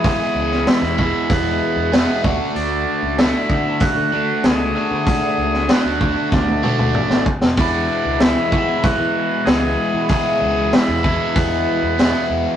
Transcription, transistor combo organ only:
X:1
M:4/4
L:1/8
Q:1/4=96
K:Emix
V:1 name="Transistor combo organ"
G2 E2 B,3 z | D2 E2 F2 G2 | G2 F2 D3 z | D2 E2 F2 G2 |
G2 E2 B,3 z |]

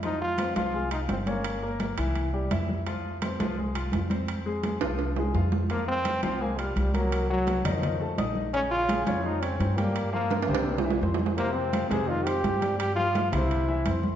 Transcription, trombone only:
X:1
M:4/4
L:1/8
Q:1/4=169
K:Fm
V:1 name="Trombone"
E F2 F2 E C B,- | B,2 z6 | z8 | z8 |
B, C2 C B, G, G, _G,- | _G, G,2 F,3 z2 | D F2 F E C C B,- | B, B,2 G,3 z2 |
B, C2 A F G3 | G F2 =E4 z |]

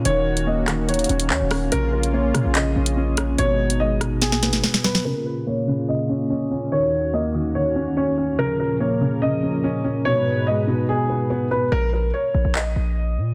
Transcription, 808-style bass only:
X:1
M:4/4
L:1/16
Q:1/4=144
K:Bbphr
V:1 name="808-style bass" clef=bass
E,,,8- E,,,2 E,,,2 E,, E,,,3 | B,,,6 B,, B,,,3 B,,,6 | A,,,8- A,,, B,,,3/2 A,,,3/2 z4 | z16 |
z16 | z16 | z16 | B,,,4 z2 B,,, B,,,3 B,,,4 B,,2 |]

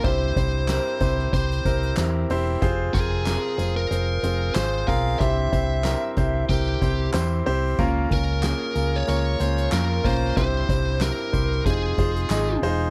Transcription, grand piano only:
X:1
M:4/4
L:1/8
Q:"Swing 16ths" 1/4=93
K:Cphr
V:1 name="Grand piano"
[C=EGc] [CEGc] [CEGB] [CEGc] [CEGc] [CEGB] [CEGB] [CEGc] | [CFAc] [CFAB] [CFAB] [CFAc] [CFAc] [CFAc] [CFAc] [CFAB] | [C=EGc] [CEGc] [CEGB] [CEGc] [CEGB] [CEGc] [CEGc] [CEGc] | [B,DFB] [B,DFB] [B,DFA] [B,DFB] [B,DFB] [B,DFc] [B,DFB] [B,DFB] |
[C=EGc] [CEGc] [CEGB] [CEGc] [_EFAc] [EFAc] [EFAe] [EFAc] |]
V:2 name="Grand piano" clef=bass
G,,3 z4 z | C,3 z4 z | G,,3 z4 z | D,3 z4 z |
G,,3 z C,3 z |]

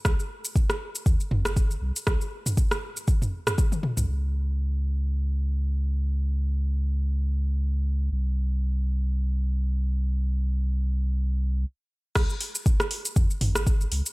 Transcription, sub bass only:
X:1
M:4/4
L:1/16
Q:"Swing 16ths" 1/4=119
K:Dblyd
V:1 name="Sub bass" clef=bass
C,, z6 z E,, z G,,,4 C,, z | C,, z12 z2 C,, | D,,16- | D,,16 |
C,,16- | C,,12 z4 | D,, z6 z F,, z A,,,4 D,, z |]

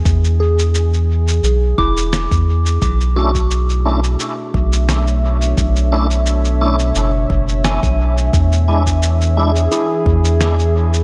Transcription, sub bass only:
X:1
M:4/4
L:1/16
Q:"Swing 16ths" 1/4=87
K:Bdor
V:1 name="Sub bass" clef=bass
E,,8 B,,,2 E,,,3 E,,3 | B,,,8 z2 B,,,6 | B,,,8 F,,,2 F,,,3 B,,,3 | E,,8 z2 E,,6 |]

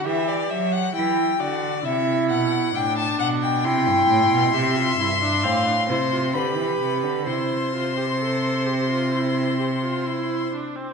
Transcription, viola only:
X:1
M:4/4
L:1/16
Q:1/4=66
K:C
V:1 name="Viola"
G4 E2 ^F2 E4 D4 | E4 G F E D C D E F G4 | E2 F G A2 G F E2 G F E2 D C |]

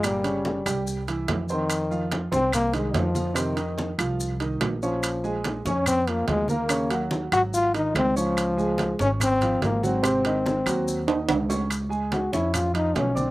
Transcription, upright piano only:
X:1
M:4/4
L:1/8
Q:1/4=144
K:Db
V:1 name="Upright piano"
[B,,B,B] [D,Dd]2 [=G,=G=g]2 [=E,=E=e]2 [Ccc']- | [Ccc'] [F,Ff]2 [Ccc']2 [E,Ee]2 [F,Ff] | [C,Cc] [E,Ee]2 [F,Ff]2 [E,Ee]2 [Ddd']- | [Ddd'] [A,Aa]2 [Ddd']2 [F,Ff]2 [B,Bb] |
[D,Dd] [G,Gg]2 [G,Gg]2 [E,Ee]2 [Ddd']- | [Ddd'] [A,Aa]2 [Ddd']2 [F,Ff]2 [G,Gg] | [C,Cc] [E,Ee]2 [G,Gg]2 [E,Ee]2 [Ddd'] | z [A,Aa]2 [Ddd']2 [F,Ff]2 [=D=d=d'] |]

